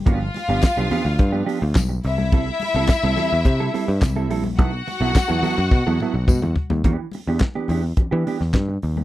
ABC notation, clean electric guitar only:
X:1
M:4/4
L:1/16
Q:1/4=106
K:Em
V:1 name="Clean electric guitar"
[=F,B,DG] z2 [F,B,DG] z [F,B,DG] [F,B,DG] z2 [F,B,DG] [F,B,DG] z4 z | [G,CEA] z2 [G,CEA] z [G,CEA] [G,CEA] z2 [G,CEA] [G,CEA] z2 [G,CEA] [G,CEA] z | [F,B,EA] z2 [F,B,EA] z [F,B,EA] [F,B,EA] z2 [F,B,EA] [F,B,EA] z4 z | [E,B,DG] z2 [E,B,DG] z [E,B,DG] [E,B,DG] z2 [E,B,DG] [E,B,DG] z4 z |]